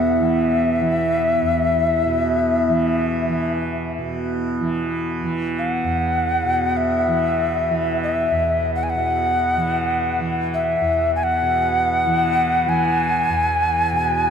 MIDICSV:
0, 0, Header, 1, 4, 480
1, 0, Start_track
1, 0, Key_signature, 4, "major"
1, 0, Tempo, 500000
1, 13729, End_track
2, 0, Start_track
2, 0, Title_t, "Native American-style wooden flute"
2, 0, Program_c, 0, 77
2, 0, Note_on_c, 0, 76, 77
2, 3388, Note_off_c, 0, 76, 0
2, 5364, Note_on_c, 0, 78, 69
2, 6499, Note_on_c, 0, 76, 78
2, 6513, Note_off_c, 0, 78, 0
2, 7699, Note_off_c, 0, 76, 0
2, 7712, Note_on_c, 0, 76, 67
2, 8362, Note_off_c, 0, 76, 0
2, 8405, Note_on_c, 0, 78, 69
2, 8480, Note_on_c, 0, 80, 60
2, 8495, Note_off_c, 0, 78, 0
2, 8543, Note_on_c, 0, 78, 82
2, 8557, Note_off_c, 0, 80, 0
2, 9882, Note_off_c, 0, 78, 0
2, 10119, Note_on_c, 0, 76, 71
2, 10673, Note_off_c, 0, 76, 0
2, 10713, Note_on_c, 0, 80, 54
2, 10786, Note_on_c, 0, 78, 95
2, 10800, Note_off_c, 0, 80, 0
2, 12180, Note_on_c, 0, 80, 89
2, 12195, Note_off_c, 0, 78, 0
2, 13729, Note_off_c, 0, 80, 0
2, 13729, End_track
3, 0, Start_track
3, 0, Title_t, "Singing bowl"
3, 0, Program_c, 1, 14
3, 0, Note_on_c, 1, 59, 49
3, 0, Note_on_c, 1, 64, 41
3, 4350, Note_off_c, 1, 59, 0
3, 4373, Note_off_c, 1, 64, 0
3, 13729, End_track
4, 0, Start_track
4, 0, Title_t, "Tanpura"
4, 0, Program_c, 2, 104
4, 0, Note_on_c, 2, 40, 54
4, 0, Note_on_c, 2, 47, 46
4, 0, Note_on_c, 2, 52, 54
4, 188, Note_off_c, 2, 52, 0
4, 188, Note_on_c, 2, 52, 48
4, 778, Note_off_c, 2, 52, 0
4, 778, Note_on_c, 2, 52, 54
4, 1356, Note_off_c, 2, 40, 0
4, 1360, Note_on_c, 2, 40, 49
4, 1969, Note_off_c, 2, 47, 0
4, 1973, Note_on_c, 2, 47, 53
4, 2575, Note_off_c, 2, 52, 0
4, 2575, Note_on_c, 2, 52, 50
4, 3158, Note_off_c, 2, 52, 0
4, 3158, Note_on_c, 2, 52, 52
4, 3822, Note_off_c, 2, 47, 0
4, 3826, Note_on_c, 2, 47, 48
4, 4419, Note_off_c, 2, 52, 0
4, 4419, Note_on_c, 2, 52, 46
4, 5024, Note_off_c, 2, 52, 0
4, 5024, Note_on_c, 2, 52, 54
4, 5600, Note_off_c, 2, 40, 0
4, 5604, Note_on_c, 2, 40, 50
4, 6179, Note_off_c, 2, 47, 0
4, 6183, Note_on_c, 2, 47, 49
4, 6795, Note_off_c, 2, 52, 0
4, 6795, Note_on_c, 2, 52, 50
4, 7389, Note_off_c, 2, 52, 0
4, 7389, Note_on_c, 2, 52, 46
4, 7972, Note_off_c, 2, 40, 0
4, 7975, Note_on_c, 2, 40, 49
4, 8587, Note_off_c, 2, 47, 0
4, 8590, Note_on_c, 2, 47, 50
4, 9181, Note_off_c, 2, 52, 0
4, 9181, Note_on_c, 2, 52, 48
4, 9785, Note_off_c, 2, 52, 0
4, 9785, Note_on_c, 2, 52, 50
4, 10370, Note_off_c, 2, 40, 0
4, 10374, Note_on_c, 2, 40, 50
4, 10959, Note_off_c, 2, 47, 0
4, 10963, Note_on_c, 2, 47, 49
4, 11571, Note_off_c, 2, 52, 0
4, 11571, Note_on_c, 2, 52, 51
4, 12157, Note_off_c, 2, 52, 0
4, 12157, Note_on_c, 2, 52, 57
4, 12754, Note_off_c, 2, 40, 0
4, 12758, Note_on_c, 2, 40, 47
4, 13363, Note_off_c, 2, 47, 0
4, 13367, Note_on_c, 2, 47, 49
4, 13729, Note_off_c, 2, 40, 0
4, 13729, Note_off_c, 2, 47, 0
4, 13729, Note_off_c, 2, 52, 0
4, 13729, End_track
0, 0, End_of_file